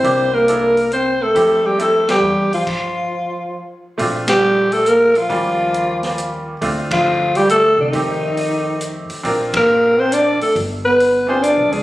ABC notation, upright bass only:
X:1
M:3/4
L:1/8
Q:"Swing" 1/4=137
K:F
V:1 name="Upright bass" clef=bass
C,,6 | F,,4 E,,2 | z6 | [K:Bb] B,,,6 |
E,,6 | D,,4- D,, C, | F,,4- F,, z | B,,,4- B,,, z |
G,,,4- (3G,,, =B,,, _D,, |]